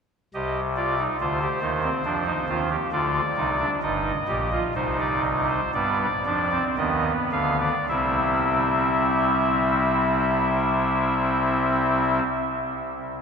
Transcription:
0.34 C2 C3 G4 D#5
0.76 F4 D5
0.98 D#4
1.20 D2 D3 F4 C5
1.42 G4
1.62 D#2 D#3 D#4
1.82 C4
2.05 F2 F3 D4
2.26 D#4
2.48 D#2 D#3 F4
2.71 G4
2.92 D2 D3 F4 D5
3.37 C2 C3 D#4
3.59 D4
3.83 G1 G2 D#4 D#5
4.28 A#1 A#2 G4
4.52 F4
4.75 C2 C3 D#4 C5
5.00 D5
5.25 D#5
5.49 C5
5.74 G2 G3 B3 D5
6.25 F2 F3 D4
6.51 C4
6.78 D#2 D#3 B3 D#5
7.32 D2 D3 F5
7.60 D5
7.89 C2 C3 G3 C4 E4 E5

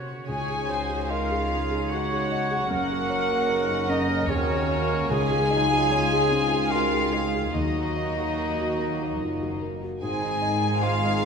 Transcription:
Already playing: C3 A#3 C#4 F#4 C#5
0.27 C#2 C#3 G#3 C#4 D#4 G#4 C#5 G#5
0.49 G#4
0.68 F#4 C5 C#5
0.90 G#4
1.10 C#4 F4 A#4 D#5 F5
1.31 G#4
1.50 D#4 G#4
1.71 G#4
1.91 F#4 C#5 F#5
2.12 G#4
2.32 D#5
2.51 G#4
2.70 F#1 F#2 C#3 A#3 C#4 F#4 A#4 F#5
2.91 A#4
3.10 C#5
3.30 A#4
3.49 D#4 C#5
3.69 A#4
3.89 C#4 D#4 D#5
4.28 D#2 C4 C#4 F#4 G#4 A#4 C#5
4.49 A#4
4.69 A#3 A#4 C#5
4.89 A#4
5.10 C#2 G#3 C#4 D#4 F4 G#4 G#5
5.31 G#4
5.50 F#3 D#4 D#5
5.71 G#4
5.90 C#4 G#4 C#5
6.12 G#4
6.32 C#3 C4
6.52 G#4
6.71 F4 F#4 A#4 F5
6.93 G#4
7.12 G#4 D#5
7.34 G#4
7.53 D#2 F#3 A#3 D#4 F#4 D#5
7.76 F#4
7.97 D#5
8.18 F#4
8.38 A#4
8.59 F#4
8.79 A#3
8.99 F#4
9.20 F#1 F#2 F4
9.40 F#4
9.62 A#4
9.82 F#4
10.01 G#1 G#2 D#3 C4 D#4 G#4 C5 G#5
10.22 D#4
10.42 C4 D#5
10.62 D#4
10.81 D#4 F4 G#4 C5 F5
11.04 D#4

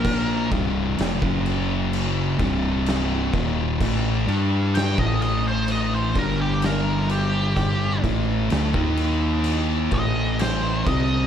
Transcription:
Already playing: A#1 A#2 F3 A#3 A#4
0.05 kick, crash
0.51 C1 C2 G2 C3, kick, crash
0.98 F1 F2 C3, snare, crash
1.22 F#1 F#2 C#3 F#3, kick
1.46 crash
1.93 crash
2.39 C1 C2 G2 C3, kick, crash
2.86 snare, crash
3.33 D#1 D#2 A#2 D#3, kick, crash
3.80 A1 A2 E3 A3, kick, crash
4.27 G2 G3 D4 G4, crash
4.75 G5, snare, crash
4.98 A1 A2 E3 A3 D#5, kick
5.22 D#5, crash
5.48 C5
5.68 crash
5.72 D#5
5.95 C5
6.15 G1 G2 D3 G3 A#4, kick, crash
6.41 G4
6.62 A#4, snare, crash
7.09 G4, crash
7.57 kick, crash
8.03 A1 A2 E3 A3, kick, crash
8.50 D2 D3 A3, snare, crash
8.74 D#2 D#3 A#3 D#4, kick
8.97 crash
9.44 crash
9.91 A1 A2 E3 A3 D#5, kick, crash
10.39 C5, snare, crash
10.86 C2 C3 G3 C4 D#5, kick, crash

